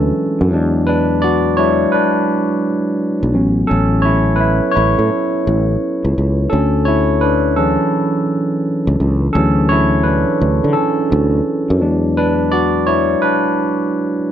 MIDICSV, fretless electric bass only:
0, 0, Header, 1, 2, 480
1, 0, Start_track
1, 0, Tempo, 705882
1, 590, Time_signature, 4, 2, 24, 8
1, 9736, End_track
2, 0, Start_track
2, 0, Title_t, "Fretless electric bass"
2, 0, Program_c, 0, 35
2, 0, Note_on_c, 0, 38, 88
2, 71, Note_off_c, 0, 38, 0
2, 278, Note_on_c, 0, 42, 88
2, 366, Note_off_c, 0, 42, 0
2, 366, Note_on_c, 0, 40, 93
2, 1261, Note_off_c, 0, 40, 0
2, 2195, Note_on_c, 0, 35, 79
2, 2282, Note_off_c, 0, 35, 0
2, 2282, Note_on_c, 0, 33, 99
2, 2471, Note_off_c, 0, 33, 0
2, 2523, Note_on_c, 0, 33, 93
2, 3121, Note_off_c, 0, 33, 0
2, 3241, Note_on_c, 0, 33, 94
2, 3360, Note_off_c, 0, 33, 0
2, 3391, Note_on_c, 0, 45, 91
2, 3458, Note_off_c, 0, 45, 0
2, 3721, Note_on_c, 0, 33, 99
2, 3911, Note_off_c, 0, 33, 0
2, 4111, Note_on_c, 0, 37, 84
2, 4178, Note_off_c, 0, 37, 0
2, 4202, Note_on_c, 0, 37, 82
2, 4391, Note_off_c, 0, 37, 0
2, 4439, Note_on_c, 0, 38, 90
2, 5279, Note_off_c, 0, 38, 0
2, 6034, Note_on_c, 0, 37, 89
2, 6100, Note_off_c, 0, 37, 0
2, 6120, Note_on_c, 0, 37, 85
2, 6311, Note_off_c, 0, 37, 0
2, 6359, Note_on_c, 0, 38, 105
2, 6959, Note_off_c, 0, 38, 0
2, 7082, Note_on_c, 0, 38, 91
2, 7200, Note_off_c, 0, 38, 0
2, 7237, Note_on_c, 0, 50, 84
2, 7302, Note_off_c, 0, 50, 0
2, 7562, Note_on_c, 0, 38, 101
2, 7751, Note_off_c, 0, 38, 0
2, 7957, Note_on_c, 0, 42, 89
2, 8040, Note_off_c, 0, 42, 0
2, 8040, Note_on_c, 0, 40, 97
2, 8937, Note_off_c, 0, 40, 0
2, 9736, End_track
0, 0, End_of_file